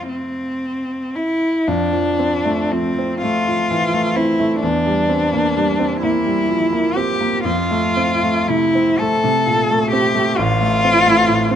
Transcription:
Already playing: grand piano F2 F3 A3 C4
0.09 cello C4
1.16 cello E4
1.68 grand piano F2, cello D4
1.93 grand piano F3
2.19 grand piano C4
2.45 grand piano A3
2.72 grand piano F3, cello C4
2.99 grand piano C4
3.22 grand piano A3, cello F4
3.48 grand piano F3
3.71 grand piano E3
3.93 grand piano A3
4.16 grand piano C4, cello E4
4.40 grand piano A3
4.62 grand piano E2, cello D4
4.86 grand piano G3
5.09 grand piano C4
5.33 grand piano A#3
5.57 grand piano G3
5.79 grand piano C4
6.03 grand piano A#3, cello E4
6.26 grand piano G3
6.49 grand piano F3
6.72 grand piano A#3
6.96 grand piano C4, cello G4
7.21 grand piano A#3
7.45 grand piano F2, cello F4
7.71 grand piano A3
7.97 grand piano C4
8.23 grand piano A3
8.49 grand piano C3, cello E4
8.75 grand piano C4
9.00 grand piano A3, cello A4
9.24 grand piano C3
9.46 grand piano A#2
9.70 grand piano A3
9.91 grand piano C4, cello G4
10.15 grand piano A3
10.37 grand piano A1, cello F4
10.61 grand piano A3
10.84 grand piano C4
11.06 grand piano A3
11.28 grand piano A2
11.51 grand piano C4

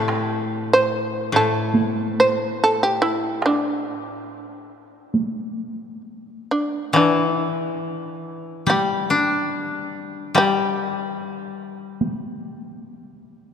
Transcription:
Already playing: koto A2, shamisen A4
0.08 taiko rim
0.73 shamisen C5
1.32 koto A2, shamisen A4
1.75 taiko high
2.20 shamisen C5
2.64 shamisen A4
2.83 shamisen G4
3.02 shamisen E4
3.42 shamisen D4, taiko rim
5.14 taiko high
6.51 shamisen D4
6.93 koto E3, shamisen D4, taiko rim
7.26 shamisen D#4
7.45 shamisen E4
8.67 koto G3, shamisen G4, taiko high
9.10 koto D4
10.35 koto G3, shamisen G4, taiko rim
12.01 taiko high

